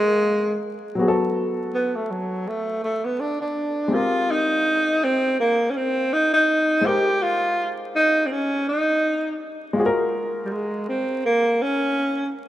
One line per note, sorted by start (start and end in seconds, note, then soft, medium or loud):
0.00 0.93 F#3 medium
0.00 0.59 G#3 loud
0.00 0.94 A#3 medium
0.00 0.95 F4 medium
0.00 0.96 G#4 medium
0.95 3.86 F#3 medium
0.95 3.87 B3 medium
0.99 3.88 F#4 medium
0.99 1.08 G#4 medium
1.08 3.92 A4 medium
1.74 1.97 B3 medium
1.95 2.13 A3 medium
2.11 2.49 F#3 medium
2.48 2.83 A3 loud
2.84 3.06 A3 medium
3.05 3.22 B3 medium
3.20 3.40 D4 medium
3.41 3.95 D4 medium
3.88 6.78 G#3 medium
3.88 6.80 C4 medium
3.92 4.32 F4 loud
3.92 6.81 G4 medium
3.92 6.82 A#4 medium
4.31 5.05 D#4 loud
5.03 5.39 C4 loud
5.40 5.72 A#3 loud
5.70 5.78 C#4 medium
5.77 6.14 C4 loud
6.13 6.33 D#4 loud
6.34 6.87 D#4 medium
6.81 9.71 G#3 medium
6.81 9.72 C5 medium
6.85 9.73 G4 medium
6.85 7.24 G4 loud
6.85 9.74 A#4 medium
7.22 7.69 F4 loud
7.95 8.27 D#4 loud
8.26 8.34 C4 medium
8.32 8.68 C#4 loud
8.69 9.37 D#4 loud
9.73 12.48 G#3 medium
9.73 12.48 F4 medium
9.78 12.48 F#4 medium
9.78 9.86 G#4 medium
9.86 12.48 A#4 medium
10.45 10.53 G3 medium
10.52 10.87 G#3 medium
10.89 11.22 C4 medium
11.26 11.64 A#3 loud
11.62 12.34 C#4 loud